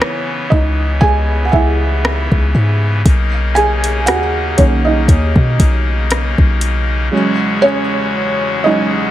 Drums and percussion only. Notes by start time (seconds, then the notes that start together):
0.02 cross-stick
0.52 kick
1.01 kick
1.53 kick
2.05 cross-stick
2.32 kick
3.06 kick, closed hi-hat
3.56 closed hi-hat
3.84 closed hi-hat
4.07 cross-stick, closed hi-hat
4.58 kick, closed hi-hat
5.08 kick, closed hi-hat
5.36 kick
5.60 kick, closed hi-hat
6.11 cross-stick, closed hi-hat
6.38 kick
6.61 closed hi-hat